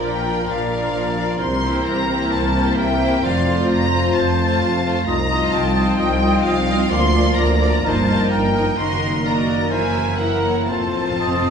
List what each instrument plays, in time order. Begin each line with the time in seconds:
Already playing: viola section F3 F4, french horn section F3 D4, clarinet D4, violin section A#4 D5, cor anglais A#4
0.01 double bass section A#1, cello section A#2, flute A#4, violin section G5
0.25 viola section F3 F4, violin section A#4 D5
0.46 double bass section A#1, cello section A#2, flute D5, violin section F5
0.71 viola section F3 F4, violin section A#4 D5
0.92 double bass section A#1, cello section A#2, flute D5
1.17 viola section F3 F4, violin section A#4 D5
1.38 double bass section C2, cello section C3, french horn section E3 C4, clarinet E4, flute C5, violin section C6
1.62 viola section A#3 E4, violin section G4 C5
1.84 double bass section C2, cello section C3, violin section A#5
2.09 viola section A#3 E4, violin section G4 C5
2.31 double bass section C2, cello section C3, violin section A5
2.55 viola section A#3 E4, violin section G4 C5
2.76 double bass section C2, cello section C3, flute E5, violin section G5
3.00 viola section A#3 E4, violin section G4 C5
3.23 double bass section F1, cello section F2, french horn section F3, viola section A3 F4, clarinet F4, violin section F4 C5 F5, cor anglais C5, flute D5
3.46 viola section A3 F4, violin section F4 C5
3.68 double bass section F1, cello section F2, violin section A#5
3.92 viola section A3 F4, violin section F4 C5
4.13 double bass section F1, cello section F2, flute C5, violin section A5
4.39 viola section A3 F4, violin section F4 C5
4.61 double bass section F1, cello section F2, flute F5
4.84 viola section A3 F4, violin section F4 C5
5.06 cello section C2, double bass section C2, french horn section F3 D#4, clarinet F4, cor anglais D#5, flute D#5, violin section A#5
5.30 viola section C4 F4, clarinet F4, violin section F4 D#5, cor anglais D#5
5.52 cello section C2, double bass section C2, clarinet F4, cor anglais D#5, flute G5, violin section A5
5.74 viola section C4 F4, clarinet F4, violin section F4 D#5, cor anglais D#5
5.98 cello section C2, double bass section C2, clarinet F4, cor anglais D#5, violin section G5
6.20 viola section C4 F4, clarinet F4, violin section F4 D#5, cor anglais D#5
6.44 cello section C2, double bass section C2, clarinet F4, cor anglais D#5, violin section F5
6.68 viola section C4 F4, clarinet F4, violin section F4 D#5, cor anglais D#5
6.90 cello section D2, double bass section D2, viola section A#3 F4, french horn section D4, clarinet F4, violin section A#4 D5 C6, cor anglais D5, flute F5
7.14 viola section A#3 F4, clarinet F4, violin section A#4 D5, cor anglais D5
7.37 double bass section D2, cello section D2, clarinet F4, cor anglais D5, flute D5, violin section A#5
7.61 viola section A#3 F4, clarinet F4, violin section A#4 D5, cor anglais D5
7.83 double bass section G1, cello section G2, french horn section A#3, viola section A#3 D#4, clarinet D#4, violin section A#4 D#5 A5, cor anglais A#4, flute C5
8.07 viola section A#3 D#4, clarinet D#4, cor anglais A#4, violin section A#4 D#5
8.30 double bass section G1, cello section G2, clarinet D#4, cor anglais A#4, flute A#4, violin section G5
8.54 viola section A#3 D#4, clarinet D#4, violin section A#4 D#5, cor anglais A#4
8.77 double bass section F#1, cello section F#2, french horn section D#3, viola section A#3 F#4, clarinet D#4, violin section A#4 D#5 C6, cor anglais A#4, flute D#5
9.24 viola section A#3 F#4, clarinet D#4, violin section A#4 D#5 A#5, cor anglais A#4, flute D5
9.71 double bass section F#1, cello section F#2, french horn section E3, viola section A#3 E4, clarinet E4, cor anglais A#4, violin section A#4 E5 G#5, flute C5
10.18 viola section A#3 E4, clarinet E4, cor anglais A#4, violin section A#4 E5 F#5, flute A#4
10.44 violin section C#5
10.68 double bass section F1, cello section F2, timpani F2, french horn section F3 C4, viola section C4 F4, clarinet F4, violin section F4 C5 A5, flute A4, cor anglais C5
10.79 timpani F2
10.87 timpani F2
10.94 timpani F2
11.03 timpani F2
11.11 timpani F2
11.19 timpani F2, cor anglais D#5
11.26 timpani F2
11.34 timpani F2
11.42 timpani F2